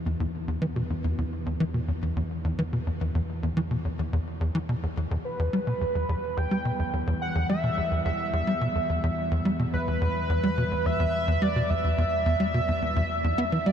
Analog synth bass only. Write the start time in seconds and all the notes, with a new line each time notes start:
0.06 E2
0.20 E2
0.48 E2
0.62 E3
0.76 B2
0.90 E2
1.04 E2
1.18 E2
1.46 E2
1.60 E3
1.74 B2
1.88 E2
2.02 E2
2.16 E2
2.44 E2
2.59 E3
2.73 B2
2.87 E2
3.01 E2
3.15 E2
3.43 E2
3.57 E3
3.71 B2
3.85 E2
3.99 E2
4.13 E2
4.41 E2
4.55 E3
4.69 B2
4.83 E2
4.97 E2
5.11 E2
5.39 E2
5.53 G3
5.67 B2
5.81 E2
5.95 E2
6.09 E2
6.37 E2
6.51 G3
6.65 B2
6.79 E2
6.93 E2
7.07 E2
7.35 E2
7.49 G3
7.64 B2
7.77 E2
7.91 E2
8.05 E2
8.33 E2
8.47 G3
8.61 B2
8.75 E2
8.89 E2
9.03 E2
9.31 E2
9.45 G3
9.59 B2
9.73 E2
9.88 E2
10.01 E2
10.29 E2
10.43 G3
10.58 B2
10.71 E2
10.86 E2
11.00 E2
11.28 E2
11.42 G3
11.56 B2
11.70 E2
11.84 E2
11.98 E2
12.26 E2
12.40 G3
12.54 B2
12.68 E2
12.82 E2
12.96 E2
13.24 E2
13.38 B3
13.52 E3
13.66 G3